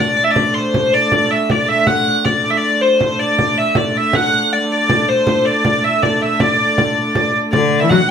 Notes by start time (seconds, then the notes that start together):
Already playing: D3 A3
0.00 D5
0.17 D5
0.24 E5
0.31 D5
0.36 frame drum
0.54 C5
0.74 C5, frame drum
0.94 D5
1.12 D5, frame drum
1.31 E5
1.50 D5, frame drum
1.68 E5
1.87 F#5, frame drum
2.25 D5, frame drum
2.44 D5, frame drum
2.50 E5
2.57 D5
2.81 C5
2.99 D3 A3 C5, frame drum
3.19 D5
3.38 D5, frame drum
3.58 E5
3.75 D5, frame drum
3.97 E5
4.13 F#5, frame drum
4.53 D5
4.71 D5
4.89 frame drum
5.08 C5
5.27 C5, frame drum
5.45 D5
5.65 D5, frame drum
5.84 E5
6.03 D5, frame drum
6.22 E5
6.40 D5, frame drum
6.78 frame drum
7.15 frame drum
7.53 D3 A3 D5, frame drum
7.72 frame drum
7.80 E3 E5
7.90 F#3 F#5, frame drum